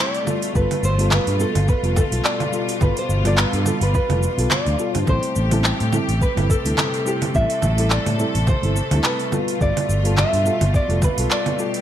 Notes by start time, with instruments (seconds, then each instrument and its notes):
Already playing: string section C3 A3 G4, fm electric piano G3 C4 E4 A4
0.00 nylon-string guitar D5
0.14 open hi-hat, shaker
0.25 string section B2 F4, fm electric piano G3 B3 F4 A4, low conga, shaker
0.42 open hi-hat, shaker
0.54 fingered electric bass G1, fm electric piano G3 B3 F4 A4, nylon-string guitar B4, kick, shaker
0.71 open hi-hat, low conga, shaker
0.83 fingered electric bass G1, nylon-string guitar C5, shaker
0.98 fm electric piano G3 B3 F4 A4, open hi-hat, shaker
1.11 nylon-string guitar B4, clap, low conga, shaker
1.27 fingered electric bass G2, open hi-hat, shaker
1.39 fm electric piano G3 B3 F4 A4, nylon-string guitar A4, shaker
1.55 fingered electric bass G1, open hi-hat, low conga, shaker
1.68 nylon-string guitar B4, kick, shaker
1.82 fingered electric bass F1, fm electric piano G3 B3 F4 A4, open hi-hat, shaker
1.96 nylon-string guitar A4, kick, low conga, shaker
2.10 fingered electric bass B1, fm electric piano G3 B3 F4 A4, open hi-hat, shaker
2.25 nylon-string guitar D5, clap, shaker
2.40 open hi-hat, low conga, shaker
2.51 fm electric piano G3 B3 F4 A4, string section G3, shaker
2.69 open hi-hat, shaker
2.79 fingered electric bass G1, fm electric piano G3 B3 F4 A4, nylon-string guitar B4, kick, low conga, shaker
2.97 nylon-string guitar C5, open hi-hat, shaker
3.09 fingered electric bass G1, shaker
3.24 fm electric piano G3 B3 F4 A4, nylon-string guitar D5, open hi-hat, low conga, shaker
3.37 nylon-string guitar B4, clap, shaker
3.53 fingered electric bass G2, nylon-string guitar A4, open hi-hat, shaker
3.64 fm electric piano G3 B3 F4 A4, low conga, shaker
3.81 fingered electric bass G1, nylon-string guitar B4, open hi-hat, shaker
3.94 nylon-string guitar B4, kick, shaker
4.09 fingered electric bass F1, fm electric piano G3 B3 F4 A4, open hi-hat, low conga, shaker
4.23 shaker
4.37 fingered electric bass B1, fm electric piano G3 B3 F4 A4, open hi-hat, shaker
4.51 nylon-string guitar D5, clap, low conga, shaker
4.66 fingered electric bass D2, open hi-hat, shaker
4.78 fm electric piano G3 B3 F4 A4, shaker
4.95 fingered electric bass G2, nylon-string guitar C5, open hi-hat, low conga, shaker
5.06 fingered electric bass A1, string section C3 A3 G4, fm electric piano G3 C4 E4 A4, nylon-string guitar C5, kick, low conga, shaker
5.23 open hi-hat, shaker
5.36 fingered electric bass A1, shaker
5.50 fm electric piano G3 C4 E4 A4, open hi-hat, low conga, shaker
5.64 clap, shaker
5.80 fingered electric bass A2, open hi-hat, shaker
5.91 fm electric piano G3 C4 E4 A4, low conga, shaker
6.08 fingered electric bass A1, open hi-hat, shaker
6.21 nylon-string guitar B4, kick, shaker
6.35 fingered electric bass G1, fm electric piano G3 C4 E4 A4, open hi-hat, low conga, shaker
6.50 nylon-string guitar A4, kick, shaker
6.64 fingered electric bass D2, fm electric piano G3 C4 E4 A4, open hi-hat, shaker
6.78 clap, low conga, shaker
6.94 open hi-hat, shaker
7.05 fm electric piano G3 C4 E4 A4, nylon-string guitar G4, shaker
7.22 open hi-hat, low conga, shaker
7.33 fingered electric bass A1, fm electric piano G3 C4 E4 A4, string section A4, nylon-string guitar E5, kick, shaker
7.50 open hi-hat, shaker
7.62 fingered electric bass A1, low conga, shaker
7.77 fm electric piano G3 C4 E4 A4, open hi-hat, shaker
7.90 nylon-string guitar D5, clap, shaker
8.06 fingered electric bass A2, open hi-hat, low conga, shaker
8.18 fm electric piano G3 C4 E4 A4, shaker
8.35 fingered electric bass A1, open hi-hat, shaker
8.47 nylon-string guitar C5, kick, low conga, shaker
8.62 fingered electric bass G1, fm electric piano G3 C4 E4 A4, open hi-hat, shaker
8.76 shaker
8.91 fingered electric bass D2, fm electric piano G3 C4 E4 A4, open hi-hat, low conga, shaker
9.04 nylon-string guitar B4, clap, shaker
9.20 open hi-hat, shaker
9.31 string section B2 F4, fm electric piano G3 B3 F4 A4, low conga, shaker
9.48 open hi-hat, shaker
9.59 fingered electric bass G1, fm electric piano G3 B3 F4 A4, nylon-string guitar D5, kick, shaker
9.77 open hi-hat, low conga, shaker
9.89 fingered electric bass G1, shaker
10.03 fm electric piano G3 B3 F4 A4, open hi-hat, shaker
10.17 nylon-string guitar E5, clap, low conga, shaker
10.33 fingered electric bass G2, open hi-hat, shaker
10.44 fm electric piano G3 B3 F4 A4, shaker
10.61 fingered electric bass G1, open hi-hat, low conga, shaker
10.74 nylon-string guitar D5, kick, shaker
10.88 fingered electric bass F1, fm electric piano G3 B3 F4 A4, open hi-hat, shaker
11.02 nylon-string guitar B4, kick, low conga, shaker
11.16 fingered electric bass B1, fm electric piano G3 B3 F4 A4, open hi-hat, shaker
11.31 nylon-string guitar D5, clap, shaker
11.46 open hi-hat, low conga, shaker
11.57 fm electric piano G3 B3 F4 A4, string section G4, shaker
11.74 open hi-hat, shaker